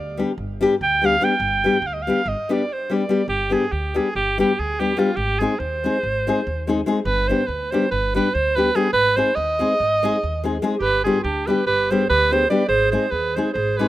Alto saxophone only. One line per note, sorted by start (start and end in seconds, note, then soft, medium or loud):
0.00 0.20 D5 medium
0.83 1.07 G5 loud
1.05 1.26 F5 loud
1.24 1.88 G5 loud
1.86 1.95 F5 medium
1.93 2.04 D#5 medium
2.02 2.29 F5 loud
2.28 2.54 D#5 medium
2.53 2.74 D5 medium
2.73 2.95 C5 medium
2.94 3.28 D5 medium
3.29 3.54 G4 loud
3.53 3.73 G#4 medium
3.72 3.98 G4 medium
3.97 4.15 G#4 medium
4.16 4.38 G4 loud
4.40 4.61 G4 medium
4.60 4.82 G#4 loud
4.80 5.00 G4 loud
4.98 5.17 F4 medium
5.16 5.41 G4 loud
5.39 5.60 G#4 medium
5.59 6.86 C5 loud
7.04 7.29 B4 loud
7.28 7.48 C5 medium
7.47 7.72 B4 medium
7.71 7.90 C5 medium
7.91 8.14 B4 loud
8.16 8.35 B4 loud
8.34 8.57 C5 loud
8.56 8.77 B4 loud
8.75 8.92 G#4 loud
8.93 9.18 B4 loud
9.16 9.37 C5 loud
9.35 10.63 D#5 loud
10.81 11.03 B4 loud
11.04 11.23 G#4 medium
11.24 11.48 G4 medium
11.47 11.66 B4 medium
11.67 11.92 B4 loud
11.91 12.09 C5 loud
12.10 12.34 B4 loud
12.32 12.49 C5 loud
12.50 12.67 D5 loud
12.69 12.91 C5 loud
12.91 13.12 C5 loud
13.11 13.37 B4 loud
13.35 13.53 C5 medium
13.54 13.78 C5 loud
13.77 13.88 B4 loud